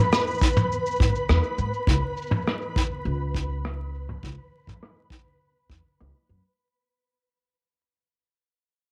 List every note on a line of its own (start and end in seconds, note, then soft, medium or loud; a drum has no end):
0.00 6.59 B4 medium
0.00 6.59 B5 medium
0.12 cross-stick loud
0.12 cabasa medium
0.27 cabasa soft
0.30 cabasa soft
0.34 cabasa soft
0.38 cabasa soft
0.41 kick loud
0.41 cabasa soft
0.41 cabasa medium
0.45 cabasa soft
0.48 cabasa soft
0.52 cabasa soft
0.57 mid tom medium
0.57 cabasa soft
0.72 cabasa medium
0.86 cabasa soft
0.91 cabasa soft
0.96 1.10 G#2 medium
0.96 cabasa soft
1.00 kick loud
1.00 cabasa medium
1.11 cabasa soft
1.15 cabasa medium
1.29 1.39 E2 medium
1.29 cross-stick loud
1.29 cabasa medium
1.44 cabasa soft
1.58 1.69 G#2 medium
1.58 cabasa medium
1.74 cabasa soft
1.87 1.98 C#2 medium
1.87 kick loud
1.87 cabasa medium
2.17 cabasa medium
2.22 cabasa medium
2.27 cabasa soft
2.31 mid tom medium
2.37 cabasa soft
2.42 cabasa soft
2.47 cross-stick medium
2.47 cabasa medium
2.62 cabasa soft
2.76 kick loud
2.91 cabasa soft
3.05 4.16 C#2 medium
3.05 cabasa soft
3.35 kick medium
3.49 cabasa soft
3.65 cross-stick medium
3.65 cabasa medium
3.79 cabasa soft
3.95 cabasa medium
4.09 mid tom medium
4.09 cabasa medium
4.23 4.33 C#2 medium
4.23 kick loud
4.53 cabasa soft
4.56 cabasa soft
4.58 cabasa soft
4.61 cabasa medium
4.63 cabasa medium
4.66 kick medium
4.66 mid tom medium
4.66 cabasa medium
4.83 cross-stick medium
5.10 kick medium
5.57 cabasa soft
5.70 5.80 E2 medium
5.70 kick medium
6.01 6.10 C#2 medium
6.01 cross-stick medium
6.29 6.39 F#2 medium